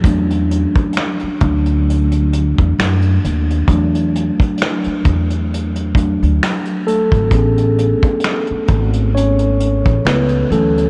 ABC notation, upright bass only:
X:1
M:4/4
L:1/16
Q:"Swing 16ths" 1/4=66
K:A
V:1 name="Upright bass" clef=bass
E,,3 z3 D,,4- D,, E,, F,,2 ^D,,2 | E,,3 z3 E,,4- E,, D,, z3 G,,, | A,,,3 z3 G,,,4- G,,, A,,, C,,2 D,,2 |]